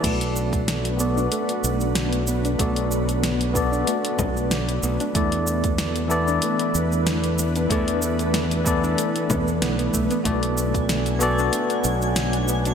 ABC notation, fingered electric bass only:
X:1
M:4/4
L:1/8
Q:"Swing 16ths" 1/4=94
K:Bdor
V:1 name="Fingered electric bass" clef=bass
B,,,4 z B,,,3 | B,,,4 z B,,,2 B,,, | E,,4 z E,,3 | E,,4 z E,, B,,, B,,, |
B,,,4 z B,,,3 |]